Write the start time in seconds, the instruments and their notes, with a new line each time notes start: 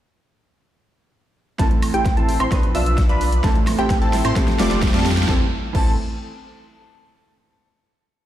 1.58 sub bass A1, grand piano A2 E3 A3 C4 A4, supersaw synth C4 E4 A4, analog synth pad A4 C5 E5 C6, digital synth lead A5, kick, snare, closed hi-hat, riser
1.71 closed hi-hat
1.82 open hi-hat, high woodblock
1.94 sub bass A1, supersaw synth C4 E4 G4, digital synth lead G5, closed hi-hat
2.06 kick, snare, closed hi-hat
2.17 sub bass A1, supersaw synth C4 E4 A4, digital synth lead A5, closed hi-hat
2.29 open hi-hat
2.40 sub bass A1, supersaw synth C4 E4 C5, digital synth lead C6, closed hi-hat, high woodblock
2.50 grand piano B2 F3 B3 D4 B4, analog synth pad F4 B4 D5 B5, kick, snare, closed hi-hat, high woodblock
2.63 closed hi-hat
2.75 sub bass B1, supersaw synth D4 F4 E5, digital synth lead E6, open hi-hat
2.86 closed hi-hat
2.98 kick, snare, closed hi-hat
3.09 sub bass B1, supersaw synth D4 F4 B4, digital synth lead B5, closed hi-hat
3.21 open hi-hat
3.32 closed hi-hat
3.43 sub bass A1, grand piano A2 E3 A3 C4 A4, supersaw synth C4 E4 A4, analog synth pad A4 C5 E5 C6, digital synth lead A5, kick, snare, closed hi-hat
3.56 closed hi-hat
3.67 snare, open hi-hat, high woodblock
3.79 sub bass A1, supersaw synth C4 E4 G4, digital synth lead G5, closed hi-hat
3.90 kick, snare, closed hi-hat
4.02 sub bass A1, supersaw synth C4 E4 A4, digital synth lead A5, closed hi-hat
4.13 snare, open hi-hat
4.25 sub bass A2, supersaw synth C4 E4 C5, digital synth lead C6, closed hi-hat, high woodblock
4.35 grand piano F3 A3 C4 G4, analog synth pad F5 G5, kick, snare, closed hi-hat
4.48 snare, closed hi-hat
4.59 sub bass F1, supersaw synth G3 A3 C4 F4 D5, digital synth lead D6, snare, open hi-hat
4.71 snare, closed hi-hat
4.82 kick, snare, closed hi-hat
4.88 snare
4.94 sub bass F2, supersaw synth G3 A3 C4 F4 A4, digital synth lead A5, snare, closed hi-hat
5.00 snare
5.06 snare, open hi-hat
5.11 snare
5.17 snare, closed hi-hat
5.23 grand piano E3, snare
5.28 sub bass A1, grand piano A3 C4 A4, supersaw synth C4 E4 A4, digital synth lead A5, kick, snare
5.73 sub bass A1, grand piano E3 A3 C4 A4, supersaw synth C4 E4 A4, digital synth lead A5, kick, crash